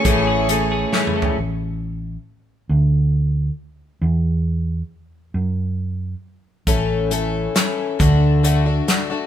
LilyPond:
<<
  \new Staff \with { instrumentName = "String section" } { \time 3/4 \key a \major \tempo 4 = 136 <gis'' cis'''>2. | r2. | r2. | r2. |
r2. | r2. | r2. | }
  \new Staff \with { instrumentName = "Clean electric guitar" } { \time 3/4 \key a \major <a, a cis' gis'>8 gis'8 a8 gis'8 cis'8 a8 | r2. | r2. | r2. |
r2. | r2. | r2. | }
  \new Staff \with { instrumentName = "Twelve-string acoustic guitar" } { \time 3/4 \key a \major <a, e a cis' gis'>4 <e a cis' gis'>4 <e a cis' gis'>4 | r2. | r2. | r2. |
r2. | <a, e a cis' a'>4 <e a cis' a'>4 <e a cis' a'>4 | <d a d' fis'>4 <d a d' fis'>8 <a d' fis'>8 <d a d' fis'>8 <a d' fis'>8 | }
  \new Staff \with { instrumentName = "Fingered electric bass" } { \clef bass \time 3/4 \key a \major a,,2 r4 | a,,2 r4 | d,2 r4 | e,2 r4 |
fis,2 r4 | a,,2 r4 | d,2 r4 | }
  \new DrumStaff \with { instrumentName = "Drums" } \drummode { \time 3/4 <hh bd>4 hh4 \tuplet 3/2 { sn8 toml8 tomfh8 } | r4 r4 r4 | r4 r4 r4 | r4 r4 r4 |
r4 r4 r4 | <hh bd>4 hh4 <hh sn>4 | <hh bd>4 hh4 <hh sn>4 | }
>>